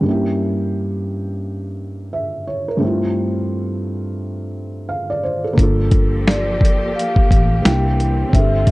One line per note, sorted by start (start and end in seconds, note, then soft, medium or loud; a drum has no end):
0.01 2.75 G2 medium
0.01 2.76 A#3 medium
0.06 2.78 C#4 medium
0.06 2.79 E4 medium
0.11 2.80 G4 medium
2.13 2.46 E5 medium
2.48 2.67 C#5 medium
2.68 3.01 A#4 medium
2.77 5.51 G2 medium
2.77 5.53 A3 medium
2.82 5.54 C4 medium
2.82 5.55 E4 medium
2.87 5.56 F4 medium
4.89 5.08 F5 medium
5.10 5.23 D5 medium
5.23 5.43 C5 medium
5.44 5.61 A4 medium
5.53 7.58 A#3 medium
5.53 7.60 D4 medium
5.57 6.92 G1 loud
5.57 7.62 F3 medium
5.57 8.30 A#3 medium
5.57 7.61 F4 medium
5.57 8.30 G4 medium
5.57 7.62 A4 medium
5.57 kick loud
5.57 closed hi-hat medium
5.63 7.63 A4 medium
5.91 kick medium
5.91 closed hi-hat medium
6.27 6.98 D5 medium
6.27 snare loud
6.27 closed hi-hat medium
6.61 kick medium
6.61 closed hi-hat medium
6.96 7.66 F5 medium
6.96 closed hi-hat medium
7.16 muted fingered electric bass stroke medium
7.16 kick medium
7.31 7.60 A1 medium
7.31 kick medium
7.31 closed hi-hat medium
7.62 8.23 C2 loud
7.62 8.32 E3 medium
7.62 8.32 A#3 medium
7.62 8.71 C4 medium
7.62 8.31 D4 medium
7.62 8.34 E4 medium
7.62 8.36 G5 loud
7.62 snare loud
7.62 closed hi-hat loud
7.67 8.34 G4 medium
8.00 closed hi-hat medium
8.29 8.71 D3 medium
8.29 8.71 A3 medium
8.29 8.71 C4 medium
8.29 8.71 D4 medium
8.29 8.71 F4 medium
8.33 8.71 G1 loud
8.33 8.71 G4 medium
8.33 8.69 E5 loud
8.33 kick loud
8.33 closed hi-hat medium
8.39 8.71 A4 medium
8.67 kick medium
8.67 closed hi-hat medium